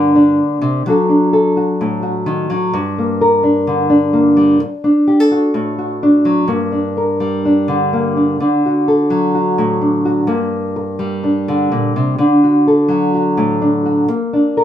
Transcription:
0.00 0.39 G2 medium
0.00 0.61 D3 medium
0.00 0.86 A#3 medium
0.00 0.15 D4 medium
0.00 0.84 A#4 medium
0.15 0.87 D4 medium
0.61 0.85 C3 medium
0.86 2.49 F#3 medium
0.86 1.09 D4 medium
0.86 1.56 F#4 medium
0.86 1.32 A4 medium
0.86 muted nylon-string guitar stroke medium
1.09 2.98 D4 medium
1.33 2.71 A4 medium
1.57 2.01 F#4 medium
1.81 2.72 A2 medium
2.03 2.71 F#4 medium
2.26 2.50 D#3 medium
2.50 2.74 F#3 medium
2.73 4.62 G2 medium
2.98 4.12 A#3 medium
3.21 4.59 A#4 medium
3.43 3.89 D4 medium
3.67 4.59 D3 medium
3.90 4.83 D4 medium
4.13 4.61 A#3 medium
4.37 4.58 G3 medium
4.60 muted nylon-string guitar stroke medium
4.84 6.02 D4 medium
5.08 5.20 G4 medium
5.20 6.49 A4 medium
5.31 5.77 F#4 medium
5.54 6.47 A2 medium
5.78 6.47 F#4 medium
6.03 6.47 D4 medium
6.25 6.47 F#3 medium
6.48 8.38 G2 medium
6.48 7.91 A#3 medium
6.72 7.45 D4 medium
6.97 8.37 A#4 medium
7.20 8.36 G3 medium
7.45 8.17 D4 medium
7.68 8.37 D3 medium
7.93 8.40 A#3 medium
8.17 8.42 D4 medium
8.40 10.27 D3 medium
8.40 9.81 D4 medium
8.66 9.33 F#4 medium
8.88 10.27 A4 medium
9.10 10.26 F#3 medium
9.35 10.04 F#4 medium
9.58 10.27 A2 medium
9.81 10.28 D4 medium
10.05 10.26 F#4 medium
10.27 11.71 G2 medium
10.27 12.19 A#3 medium
10.76 muted nylon-string guitar stroke medium
10.99 12.16 G3 medium
11.23 12.19 D4 medium
11.48 11.96 D3 medium
11.72 11.96 A#2 medium
11.96 12.18 C3 medium
12.18 14.07 D3 medium
12.18 13.61 D4 medium
12.44 13.13 F#4 medium
12.67 14.07 A4 medium
12.88 14.06 F#3 medium
13.14 13.84 F#4 medium
13.37 14.07 A2 medium
13.62 14.08 D4 medium
13.86 14.07 F#4 medium
14.08 14.64 A#3 medium
14.08 muted nylon-string guitar stroke medium
14.33 14.64 D4 medium
14.57 14.64 A#4 medium

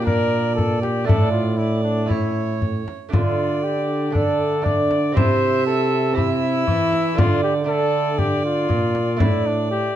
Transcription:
0.00 1.04 A#2 medium
0.00 1.08 A#2 medium
0.00 1.03 D4 medium
0.05 0.55 A#4 loud
0.05 1.06 D5 medium
0.05 frame drum medium
0.55 0.81 A4 medium
0.55 frame drum medium
0.82 1.06 G4 medium
0.82 frame drum medium
1.04 2.83 A2 medium
1.04 2.05 A3 medium
1.04 2.05 D4 medium
1.04 2.06 E4 medium
1.04 1.31 A4 loud
1.08 2.83 A2 medium
1.08 1.58 D5 medium
1.08 frame drum medium
1.31 1.59 F4 medium
1.57 1.82 E4 medium
1.57 2.12 D5 medium
1.83 2.09 D4 medium
2.06 3.07 A3 soft
2.06 3.08 C#4 soft
2.06 3.08 E4 soft
2.06 2.60 E4 medium
2.10 2.93 C#5 medium
2.10 frame drum medium
2.62 frame drum soft
2.88 frame drum soft
3.09 5.12 D3 medium
3.09 4.09 A3 soft
3.09 4.10 D4 soft
3.09 3.65 F4 medium
3.13 5.18 D3 medium
3.13 4.11 D5 medium
3.13 frame drum medium
3.63 4.15 G4 medium
4.11 4.61 A3 soft
4.11 4.62 D4 soft
4.11 4.66 A4 loud
4.15 4.64 D5 medium
4.15 frame drum medium
4.62 5.12 A3 medium
4.62 5.13 D4 medium
4.62 5.15 D5 loud
4.62 frame drum medium
4.66 5.18 D5 medium
4.91 frame drum medium
5.12 6.12 C4 medium
5.12 6.13 E4 medium
5.12 6.13 G4 medium
5.12 5.65 C5 loud
5.16 6.63 C3 medium
5.16 6.68 C3 medium
5.16 6.16 E5 medium
5.16 frame drum medium
5.67 6.16 A4 loud
6.13 7.13 C4 medium
6.13 7.13 E4 medium
6.13 7.19 E4 loud
6.13 7.14 G4 medium
6.13 7.19 E5 medium
6.17 frame drum medium
6.67 7.13 E3 medium
6.67 7.20 E3 medium
6.67 frame drum medium
6.93 frame drum medium
7.14 8.65 D3 medium
7.14 7.63 A3 medium
7.14 7.64 D4 medium
7.14 7.43 F4 loud
7.14 7.67 D5 medium
7.18 8.69 D3 medium
7.18 frame drum medium
7.43 7.55 G4 medium
7.64 8.64 A3 medium
7.64 9.15 D4 medium
7.64 8.20 A4 loud
7.64 9.17 D5 medium
8.18 8.44 G4 medium
8.18 frame drum medium
8.45 9.19 F4 loud
8.69 9.16 A#2 medium
8.69 9.22 A#2 medium
8.69 frame drum medium
8.95 frame drum soft
9.17 9.90 A2 medium
9.17 9.94 A2 medium
9.17 9.96 A3 medium
9.17 9.96 D4 medium
9.17 9.96 E4 medium
9.17 9.96 D5 medium
9.17 frame drum medium
9.21 9.48 E4 medium
9.46 9.70 D4 medium
9.71 9.96 G4 loud

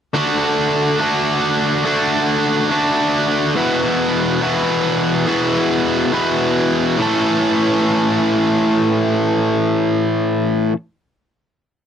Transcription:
0.14 0.99 D3 medium
0.14 1.00 A3 medium
0.14 1.01 D4 medium
0.14 1.02 F#4 medium
1.00 1.83 D3 medium
1.00 1.84 A3 medium
1.00 1.85 D4 medium
1.00 1.87 F#4 medium
1.84 2.68 D3 medium
1.84 2.70 A3 medium
1.84 2.70 D4 medium
1.84 2.72 F#4 loud
2.70 3.55 D3 medium
2.70 3.55 A3 medium
2.70 3.56 D4 medium
2.70 3.58 F#4 medium
3.55 4.40 E2 medium
3.55 4.40 B2 medium
3.55 4.42 E3 medium
3.55 4.42 B3 medium
3.55 4.43 E4 medium
3.55 4.43 F#4 loud
4.41 5.25 E2 medium
4.41 5.26 B2 medium
4.41 5.27 E3 medium
4.41 5.26 B3 medium
4.41 5.28 E4 medium
4.41 5.27 F#4 medium
5.26 6.11 E2 medium
5.26 6.12 B2 loud
5.26 6.12 E3 medium
5.26 6.12 B3 loud
5.26 6.12 E4 medium
5.26 6.13 F#4 loud
6.12 6.98 E2 medium
6.12 6.98 B2 medium
6.12 6.98 E3 medium
6.12 6.98 B3 medium
6.12 6.99 E4 medium
6.12 6.99 F#4 medium
6.98 10.73 A2 medium
6.98 10.74 E3 medium
6.98 10.75 A3 medium
6.98 10.76 C#4 medium
6.98 10.76 A4 loud

